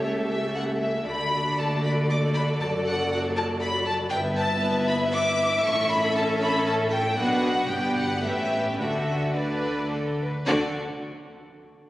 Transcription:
0.00 1.03 C#2 medium
0.00 1.03 C#3 medium
0.00 1.02 A3 medium
0.00 1.01 G4 medium
0.00 1.02 A4 medium
0.00 0.11 C#5 medium
0.00 1.02 E5 medium
0.29 0.54 E5 medium
0.55 0.63 F#5 loud
0.80 1.06 E5 medium
1.05 2.57 D2 medium
1.05 2.58 D3 medium
1.05 2.56 A3 medium
1.05 4.08 F#4 medium
1.05 4.09 A4 medium
1.05 4.09 D5 medium
1.05 1.57 B5 loud
1.59 1.84 A5 medium
1.84 1.92 B5 loud
2.10 2.18 D6 loud
2.34 2.42 B5 loud
2.59 4.09 F#1 medium
2.59 4.09 F#2 medium
2.59 4.08 F#3 loud
2.59 2.68 A5 loud
2.87 3.11 F#5 loud
3.12 3.20 F#5 loud
3.37 3.45 A5 loud
3.60 3.86 B5 loud
3.86 3.94 A5 loud
4.10 5.62 G1 loud
4.10 5.61 G2 loud
4.10 5.60 B3 loud
4.10 7.14 E4 loud
4.10 5.61 B4 loud
4.10 7.14 E5 loud
4.10 4.18 G5 loud
4.37 4.87 A5 loud
4.88 4.96 B5 loud
5.13 5.63 D6 loud
5.64 7.15 A1 loud
5.64 7.15 A2 loud
5.64 7.14 C#4 loud
5.64 7.14 A4 loud
5.64 5.90 C#6 loud
5.90 6.15 B5 loud
6.15 6.23 A5 loud
6.42 6.66 B5 loud
6.66 6.74 A5 loud
6.91 7.17 G5 loud
7.16 7.67 B1 loud
7.16 7.68 B2 loud
7.16 7.67 B3 loud
7.16 7.67 D4 loud
7.16 7.67 F#4 loud
7.16 7.67 B4 loud
7.16 7.70 F#5 loud
7.68 8.25 G1 loud
7.68 8.25 G2 loud
7.68 8.24 B3 medium
7.68 8.24 D4 medium
7.68 8.25 G4 medium
7.68 8.23 B4 loud
7.68 7.97 G5 loud
7.96 8.24 F#5 loud
8.23 8.79 A1 medium
8.23 8.80 A2 medium
8.23 8.79 A3 medium
8.23 8.78 C#4 medium
8.23 8.79 G4 medium
8.23 8.79 B4 medium
8.23 8.78 E5 loud
8.79 10.23 D2 medium
8.79 10.24 D3 medium
8.79 9.33 A3 medium
8.79 9.33 D4 medium
8.79 9.35 F#4 medium
8.79 9.35 A4 medium
8.79 9.34 E5 loud
9.34 10.24 A3 medium
9.34 10.24 D4 medium
9.34 9.88 B4 loud
9.34 10.19 D5 medium
9.91 10.20 A4 medium
10.20 10.47 B4 medium
10.47 10.78 D2 loud
10.47 10.78 D3 loud
10.47 10.78 A3 loud
10.47 10.78 D4 loud
10.47 10.78 F#4 loud
10.47 10.78 A4 loud
10.47 10.78 D5 loud

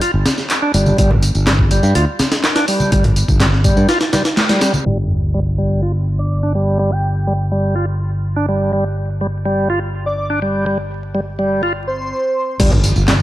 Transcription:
0.01 0.11 F4 medium
0.01 closed hi-hat medium
0.01 tambourine soft
0.14 0.23 G1 medium
0.26 snare loud
0.26 closed hi-hat medium
0.26 tambourine medium
0.26 high conga medium
0.38 snare soft
0.38 tambourine soft
0.50 clap loud
0.50 closed hi-hat medium
0.50 tambourine soft
0.62 0.72 D4 medium
0.74 0.92 G1 medium
0.74 0.97 G3 medium
0.74 closed hi-hat medium
0.74 tambourine medium
0.86 tambourine soft
0.86 high conga medium
0.98 1.29 G1 loud
0.98 1.10 G3 loud
0.98 kick loud
0.98 closed hi-hat medium
0.98 tambourine soft
1.11 low conga medium
1.22 closed hi-hat medium
1.22 tambourine medium
1.35 1.78 G1 medium
1.35 tambourine soft
1.46 1.53 G3 medium
1.46 snare loud
1.46 clap loud
1.46 closed hi-hat medium
1.46 tambourine soft
1.46 high conga medium
1.59 kick medium
1.71 1.94 G3 medium
1.71 closed hi-hat medium
1.71 tambourine medium
1.83 1.92 G2 medium
1.83 tambourine soft
1.95 2.04 D2 medium
1.95 2.05 F4 medium
1.95 closed hi-hat medium
1.95 tambourine soft
2.19 snare loud
2.19 closed hi-hat medium
2.19 tambourine medium
2.19 high conga medium
2.32 snare loud
2.32 closed hi-hat medium
2.32 tambourine soft
2.44 snare loud
2.44 clap loud
2.44 closed hi-hat medium
2.44 tambourine soft
2.56 2.65 D4 medium
2.56 snare loud
2.56 closed hi-hat medium
2.68 2.91 G3 medium
2.68 open hi-hat medium
2.68 tambourine medium
2.80 tambourine soft
2.80 high conga medium
2.92 3.23 G1 loud
2.92 3.04 G3 medium
2.92 kick loud
2.92 closed hi-hat medium
2.92 tambourine soft
3.04 closed hi-hat soft
3.04 low conga medium
3.16 closed hi-hat medium
3.16 tambourine medium
3.28 3.71 G1 medium
3.28 kick loud
3.28 tambourine soft
3.40 3.46 G3 medium
3.40 snare loud
3.40 clap loud
3.40 closed hi-hat medium
3.40 tambourine soft
3.40 high conga medium
3.52 snare soft
3.64 3.88 G3 medium
3.64 kick loud
3.64 closed hi-hat medium
3.64 tambourine medium
3.77 3.86 G2 medium
3.77 tambourine soft
3.89 3.98 F4 medium
3.89 snare loud
3.89 closed hi-hat medium
3.89 tambourine soft
4.01 snare loud
4.01 closed hi-hat medium
4.13 4.23 G3 medium
4.13 snare loud
4.13 closed hi-hat medium
4.13 tambourine medium
4.13 high conga medium
4.25 snare loud
4.25 closed hi-hat medium
4.25 tambourine soft
4.37 snare loud
4.37 clap loud
4.37 closed hi-hat medium
4.37 tambourine soft
4.49 4.61 G3 loud
4.49 snare loud
4.49 closed hi-hat medium
4.61 4.72 G3 loud
4.61 snare loud
4.61 closed hi-hat medium
4.61 tambourine medium
4.74 tambourine soft
4.74 high conga medium
4.86 12.11 G1 medium
4.86 4.97 G3 medium
4.86 sub drop medium
5.34 5.40 G3 medium
5.58 5.81 G3 medium
5.83 5.92 F4 medium
6.19 6.26 D5 medium
6.31 6.39 D5 medium
6.43 6.52 D4 medium
6.55 6.78 G3 medium
6.79 6.91 G3 medium
6.92 7.28 G5 medium
7.27 7.33 G3 medium
7.52 7.75 G3 medium
7.76 7.85 F4 medium
8.36 8.46 D4 medium
8.48 8.71 G3 medium
8.73 8.84 G3 medium
9.21 9.27 G3 medium
9.46 9.68 G3 medium
9.70 9.79 F4 medium
10.06 10.14 D5 medium
10.18 10.26 D5 medium
10.30 10.39 D4 medium
10.42 10.65 G3 medium
10.66 10.78 G3 medium
11.15 11.20 G3 medium
11.39 11.62 G3 medium
11.63 11.73 F4 medium
11.87 12.55 C5 loud
12.60 12.91 G1 loud
12.60 12.71 G3 loud
12.60 kick loud
12.60 closed hi-hat medium
12.60 crash medium
12.60 tambourine soft
12.60 impact medium
12.72 tambourine soft
12.72 low conga medium
12.84 closed hi-hat medium
12.84 tambourine medium
12.96 13.22 G1 medium
12.96 tambourine soft
13.08 13.14 G3 medium
13.08 snare loud
13.08 clap loud
13.08 closed hi-hat medium
13.08 tambourine soft
13.08 high conga medium

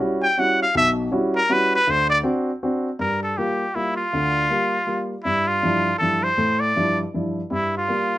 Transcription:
0.00 0.23 G3 medium
0.00 0.23 C#4 medium
0.00 0.24 E4 medium
0.00 0.24 F#4 medium
0.23 0.41 G5 medium
0.37 0.62 G3 soft
0.37 0.62 C#4 soft
0.37 0.62 E4 medium
0.37 0.62 F#4 medium
0.37 0.61 F#5 medium
0.62 0.74 F5 medium
0.75 1.07 B1 medium
0.75 1.07 B2 medium
0.75 0.90 E5 loud
1.12 1.37 G3 medium
1.12 1.37 C#4 medium
1.12 1.37 E4 medium
1.12 1.37 F#4 medium
1.36 1.54 A#4 medium
1.49 1.74 G3 medium
1.49 1.74 C#4 soft
1.49 1.74 E4 soft
1.49 1.75 F#4 medium
1.49 1.75 B4 medium
1.75 1.92 B4 medium
1.87 2.19 D2 medium
1.87 2.09 C5 medium
2.10 2.18 D5 medium
2.23 2.49 C4 medium
2.23 2.49 D4 medium
2.23 2.49 F#4 medium
2.63 2.88 C4 medium
2.63 2.88 D4 soft
2.63 2.88 F#4 medium
2.99 3.32 G2 medium
2.99 3.22 A#4 medium
3.23 3.39 A4 medium
3.37 3.63 G3 soft
3.37 3.63 A#3 soft
3.37 3.63 F4 medium
3.37 3.76 G4 medium
3.75 4.00 G3 soft
3.75 4.00 A#3 soft
3.75 3.95 E4 medium
3.75 4.00 F4 medium
3.96 5.06 F4 medium
4.13 4.45 D2 medium
4.13 4.45 D3 medium
4.50 4.75 G3 medium
4.50 4.76 A#3 soft
4.50 4.76 F4 medium
4.86 5.12 G3 soft
4.86 5.13 A#3 soft
4.86 5.13 F4 soft
5.23 5.58 G2 medium
5.23 5.49 E4 medium
5.47 5.97 F4 medium
5.63 5.88 G2 medium
5.63 5.89 F3 soft
5.63 5.89 D4 soft
5.63 5.89 E4 medium
5.98 6.26 G2 soft
5.98 6.26 F3 soft
5.98 6.26 D4 soft
5.98 6.26 E4 soft
5.98 6.25 A4 medium
6.23 6.62 C5 medium
6.37 6.70 A2 medium
6.37 6.70 A3 medium
6.60 6.99 D5 medium
6.76 7.01 G2 medium
6.76 7.01 F3 soft
6.76 7.02 D4 soft
6.76 7.02 E4 medium
7.14 7.39 G2 soft
7.14 7.39 F3 soft
7.14 7.39 D4 soft
7.14 7.39 E4 soft
7.51 7.83 G2 medium
7.51 7.83 G3 medium
7.51 7.74 E4 medium
7.77 8.18 F4 medium
7.88 8.14 G3 soft
7.88 8.14 A#3 soft
7.88 8.15 F4 medium

